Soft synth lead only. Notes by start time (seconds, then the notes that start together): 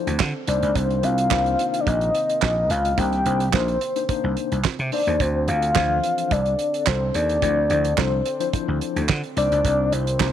0.48 D5
0.76 C5
1.04 F5
1.80 D5
1.87 D#5
2.42 D#5
2.70 F5
2.98 G5
3.54 C5
4.93 D5
5.21 C5
5.49 F5
6.32 D5
6.87 C5
7.15 D5
7.43 D5
7.99 C5
9.38 D5
9.93 C5